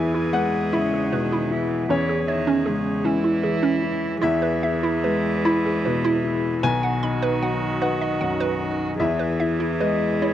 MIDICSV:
0, 0, Header, 1, 5, 480
1, 0, Start_track
1, 0, Key_signature, 4, "major"
1, 0, Tempo, 778210
1, 1173, Time_signature, 6, 3, 24, 8
1, 2606, Tempo, 816327
1, 3566, Tempo, 785340
1, 5486, Tempo, 815217
1, 6273, End_track
2, 0, Start_track
2, 0, Title_t, "Synth pluck"
2, 0, Program_c, 0, 84
2, 89, Note_on_c, 0, 64, 83
2, 161, Note_off_c, 0, 64, 0
2, 209, Note_on_c, 0, 71, 65
2, 281, Note_off_c, 0, 71, 0
2, 451, Note_on_c, 0, 64, 90
2, 524, Note_off_c, 0, 64, 0
2, 578, Note_on_c, 0, 68, 56
2, 649, Note_off_c, 0, 68, 0
2, 694, Note_on_c, 0, 71, 63
2, 767, Note_off_c, 0, 71, 0
2, 817, Note_on_c, 0, 64, 85
2, 888, Note_off_c, 0, 64, 0
2, 1172, Note_on_c, 0, 61, 84
2, 1243, Note_off_c, 0, 61, 0
2, 1291, Note_on_c, 0, 68, 60
2, 1361, Note_off_c, 0, 68, 0
2, 1408, Note_on_c, 0, 73, 65
2, 1477, Note_off_c, 0, 73, 0
2, 1525, Note_on_c, 0, 61, 87
2, 1595, Note_off_c, 0, 61, 0
2, 1639, Note_on_c, 0, 68, 61
2, 1710, Note_off_c, 0, 68, 0
2, 1881, Note_on_c, 0, 61, 85
2, 1952, Note_off_c, 0, 61, 0
2, 1999, Note_on_c, 0, 64, 62
2, 2071, Note_off_c, 0, 64, 0
2, 2118, Note_on_c, 0, 68, 65
2, 2191, Note_off_c, 0, 68, 0
2, 2238, Note_on_c, 0, 61, 92
2, 2311, Note_off_c, 0, 61, 0
2, 2600, Note_on_c, 0, 64, 89
2, 2672, Note_off_c, 0, 64, 0
2, 2720, Note_on_c, 0, 71, 69
2, 2793, Note_off_c, 0, 71, 0
2, 2845, Note_on_c, 0, 76, 60
2, 2917, Note_off_c, 0, 76, 0
2, 2963, Note_on_c, 0, 64, 81
2, 3037, Note_off_c, 0, 64, 0
2, 3085, Note_on_c, 0, 71, 64
2, 3158, Note_off_c, 0, 71, 0
2, 3327, Note_on_c, 0, 64, 85
2, 3398, Note_off_c, 0, 64, 0
2, 3448, Note_on_c, 0, 68, 57
2, 3518, Note_off_c, 0, 68, 0
2, 3563, Note_on_c, 0, 71, 61
2, 3636, Note_off_c, 0, 71, 0
2, 3680, Note_on_c, 0, 64, 92
2, 3753, Note_off_c, 0, 64, 0
2, 4039, Note_on_c, 0, 71, 90
2, 4113, Note_off_c, 0, 71, 0
2, 4161, Note_on_c, 0, 78, 67
2, 4233, Note_off_c, 0, 78, 0
2, 4282, Note_on_c, 0, 83, 67
2, 4354, Note_off_c, 0, 83, 0
2, 4402, Note_on_c, 0, 71, 85
2, 4473, Note_off_c, 0, 71, 0
2, 4524, Note_on_c, 0, 78, 67
2, 4595, Note_off_c, 0, 78, 0
2, 4763, Note_on_c, 0, 71, 78
2, 4835, Note_off_c, 0, 71, 0
2, 4884, Note_on_c, 0, 75, 61
2, 4956, Note_off_c, 0, 75, 0
2, 5003, Note_on_c, 0, 78, 60
2, 5074, Note_off_c, 0, 78, 0
2, 5122, Note_on_c, 0, 71, 87
2, 5194, Note_off_c, 0, 71, 0
2, 5487, Note_on_c, 0, 64, 88
2, 5557, Note_off_c, 0, 64, 0
2, 5600, Note_on_c, 0, 71, 67
2, 5673, Note_off_c, 0, 71, 0
2, 5720, Note_on_c, 0, 76, 59
2, 5792, Note_off_c, 0, 76, 0
2, 5840, Note_on_c, 0, 64, 81
2, 5912, Note_off_c, 0, 64, 0
2, 5960, Note_on_c, 0, 71, 61
2, 6033, Note_off_c, 0, 71, 0
2, 6206, Note_on_c, 0, 64, 89
2, 6273, Note_off_c, 0, 64, 0
2, 6273, End_track
3, 0, Start_track
3, 0, Title_t, "Viola"
3, 0, Program_c, 1, 41
3, 0, Note_on_c, 1, 68, 70
3, 1167, Note_off_c, 1, 68, 0
3, 1171, Note_on_c, 1, 68, 70
3, 1879, Note_on_c, 1, 64, 65
3, 1888, Note_off_c, 1, 68, 0
3, 2604, Note_off_c, 1, 64, 0
3, 2607, Note_on_c, 1, 68, 70
3, 4021, Note_off_c, 1, 68, 0
3, 4047, Note_on_c, 1, 66, 75
3, 5462, Note_off_c, 1, 66, 0
3, 5484, Note_on_c, 1, 68, 71
3, 6273, Note_off_c, 1, 68, 0
3, 6273, End_track
4, 0, Start_track
4, 0, Title_t, "Upright piano"
4, 0, Program_c, 2, 0
4, 0, Control_c, 2, 64, 127
4, 0, Note_on_c, 2, 40, 61
4, 0, Note_on_c, 2, 64, 49
4, 0, Note_on_c, 2, 80, 101
4, 183, Note_off_c, 2, 80, 0
4, 202, Note_on_c, 2, 56, 44
4, 204, Note_on_c, 2, 78, 93
4, 352, Note_off_c, 2, 64, 0
4, 432, Note_off_c, 2, 78, 0
4, 448, Note_on_c, 2, 76, 74
4, 451, Note_on_c, 2, 64, 53
4, 594, Note_off_c, 2, 56, 0
4, 692, Note_on_c, 2, 47, 48
4, 839, Note_off_c, 2, 64, 0
4, 928, Note_on_c, 2, 64, 54
4, 1077, Note_off_c, 2, 47, 0
4, 1146, Note_off_c, 2, 40, 0
4, 1146, Note_off_c, 2, 76, 0
4, 1165, Note_on_c, 2, 40, 61
4, 1169, Note_off_c, 2, 64, 0
4, 1175, Note_on_c, 2, 73, 91
4, 1184, Control_c, 2, 64, 0
4, 1277, Control_c, 2, 64, 127
4, 1401, Note_on_c, 2, 76, 61
4, 1642, Note_on_c, 2, 56, 49
4, 1779, Note_off_c, 2, 76, 0
4, 1878, Note_on_c, 2, 64, 56
4, 2023, Note_off_c, 2, 56, 0
4, 2120, Note_on_c, 2, 52, 43
4, 2264, Note_off_c, 2, 64, 0
4, 2338, Note_off_c, 2, 73, 0
4, 2362, Note_on_c, 2, 64, 58
4, 2508, Note_off_c, 2, 52, 0
4, 2576, Note_off_c, 2, 40, 0
4, 2605, Note_off_c, 2, 64, 0
4, 2606, Note_on_c, 2, 76, 102
4, 2609, Note_on_c, 2, 40, 74
4, 2614, Control_c, 2, 64, 0
4, 2703, Control_c, 2, 64, 127
4, 2845, Note_on_c, 2, 64, 58
4, 3089, Note_on_c, 2, 56, 49
4, 3233, Note_off_c, 2, 64, 0
4, 3305, Note_off_c, 2, 76, 0
4, 3327, Note_on_c, 2, 83, 79
4, 3333, Note_on_c, 2, 64, 61
4, 3473, Note_off_c, 2, 56, 0
4, 3570, Note_on_c, 2, 47, 52
4, 3711, Note_off_c, 2, 64, 0
4, 3801, Note_on_c, 2, 64, 55
4, 3951, Note_off_c, 2, 47, 0
4, 4019, Note_off_c, 2, 83, 0
4, 4021, Note_off_c, 2, 40, 0
4, 4040, Note_on_c, 2, 35, 74
4, 4040, Note_on_c, 2, 80, 109
4, 4043, Note_off_c, 2, 64, 0
4, 4055, Control_c, 2, 64, 0
4, 4139, Control_c, 2, 64, 127
4, 4284, Note_on_c, 2, 63, 53
4, 4521, Note_on_c, 2, 54, 50
4, 4665, Note_off_c, 2, 63, 0
4, 4735, Note_off_c, 2, 80, 0
4, 4764, Note_on_c, 2, 78, 73
4, 4765, Note_on_c, 2, 63, 54
4, 4905, Note_off_c, 2, 54, 0
4, 5005, Note_on_c, 2, 42, 44
4, 5148, Note_off_c, 2, 63, 0
4, 5246, Note_on_c, 2, 63, 47
4, 5389, Note_off_c, 2, 42, 0
4, 5458, Note_off_c, 2, 35, 0
4, 5462, Note_off_c, 2, 78, 0
4, 5484, Note_on_c, 2, 76, 87
4, 5487, Note_off_c, 2, 63, 0
4, 5487, Note_on_c, 2, 40, 66
4, 5496, Control_c, 2, 64, 0
4, 5595, Control_c, 2, 64, 127
4, 5727, Note_on_c, 2, 64, 47
4, 5937, Note_off_c, 2, 76, 0
4, 5962, Note_on_c, 2, 75, 77
4, 5963, Note_on_c, 2, 56, 46
4, 6108, Note_off_c, 2, 64, 0
4, 6187, Note_off_c, 2, 75, 0
4, 6205, Note_on_c, 2, 73, 60
4, 6206, Note_on_c, 2, 64, 48
4, 6273, Note_off_c, 2, 40, 0
4, 6273, Note_off_c, 2, 56, 0
4, 6273, Note_off_c, 2, 64, 0
4, 6273, Note_off_c, 2, 73, 0
4, 6273, End_track
5, 0, Start_track
5, 0, Title_t, "Cello"
5, 0, Program_c, 3, 42
5, 0, Note_on_c, 3, 52, 63
5, 454, Note_on_c, 3, 49, 71
5, 463, Note_off_c, 3, 52, 0
5, 696, Note_on_c, 3, 51, 65
5, 705, Note_off_c, 3, 49, 0
5, 934, Note_on_c, 3, 52, 57
5, 943, Note_off_c, 3, 51, 0
5, 1164, Note_off_c, 3, 52, 0
5, 1167, Note_on_c, 3, 52, 74
5, 1399, Note_off_c, 3, 52, 0
5, 1406, Note_on_c, 3, 51, 72
5, 1644, Note_on_c, 3, 49, 63
5, 1654, Note_off_c, 3, 51, 0
5, 1876, Note_on_c, 3, 52, 78
5, 1885, Note_off_c, 3, 49, 0
5, 2604, Note_off_c, 3, 52, 0
5, 2607, Note_on_c, 3, 52, 80
5, 4046, Note_on_c, 3, 51, 62
5, 4055, Note_off_c, 3, 52, 0
5, 5486, Note_off_c, 3, 51, 0
5, 5490, Note_on_c, 3, 52, 74
5, 6273, Note_off_c, 3, 52, 0
5, 6273, End_track
0, 0, End_of_file